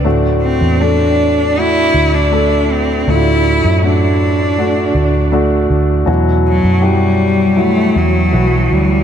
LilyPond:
<<
  \new Staff \with { instrumentName = "Grand piano" } { \time 4/4 \key d \mixolydian \tempo 4 = 80 <a d' fis'>4 <a d' a'>4 <a d' fis'>4 <a d' a'>4 | <a d' f' fis'>4 <a d' fis'>4 <a d' fis'>4 <a d' fis'>4 | <fis e' fis'>4 <e' fis' g'>4 <fis e' fis'>4 <e e' fis'>4 | }
  \new Staff \with { instrumentName = "Grand piano" } { \clef bass \time 4/4 \key d \mixolydian a,4. r2 r8 | a,4. r2 r8 | b,4. r2 r8 | }
  \new Staff \with { instrumentName = "Cello" } { \time 4/4 \key d \mixolydian r8 c'8 d'4 e'8. d'8. c'8 | e'4 d'2 r4 | r8 fis8 g4 a8 fis4 g8 | }
  \new Staff \with { instrumentName = "Fingered electric bass" } { \clef bass \time 4/4 \key d \mixolydian d,8. e,4.~ e,16 d,4. | d,8. fis,4.~ fis,16 d,4 d,8 | e,8. fis,4.~ fis,16 e,8 b,,8 d,8 | }
>>